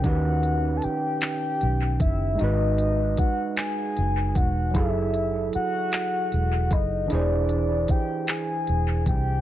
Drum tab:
HH |xxxxxx|xxxxxx|xxxxxx|xxxxxx|
CP |---x--|---x--|---x--|---x--|
BD |o----o|--o--o|o----o|--o--o|